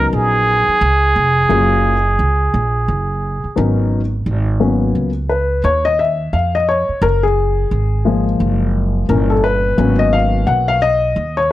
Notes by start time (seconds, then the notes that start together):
Already playing: C#2 F#3 B3 C#4 D#4 A#4
0.13 A#1 G#4
0.68 muted upright bass stroke
0.81 C#2
1.16 F1
1.49 F#1 F#3 A#3 C#4 F4 G#4
2.19 C#2
2.54 A#1
2.88 F#1
3.44 muted upright bass stroke
3.56 G#1 F#3 B3 C#4 D#4 A#4
4.26 G#1
4.60 F#3 A#3 B3 C#4
4.95 C#2
5.29 B4
5.64 D#2 C#5
5.85 D#5
5.99 E5
6.33 F2 F5
6.55 D#5
6.69 C#5
6.89 muted upright bass stroke
7.02 F#1 A#4
7.23 G#4
7.71 G#1
8.05 F3 G#3 A#3
8.40 F#1
9.09 G1 A#2 E3 C#4 A#4
9.30 A4
9.44 B4
9.78 G#1 F#3 A#3 B3 C#4
9.99 D#5
10.13 F5
10.47 B1 F#5
10.68 F5
10.82 D#5
11.16 D#2
11.37 C#5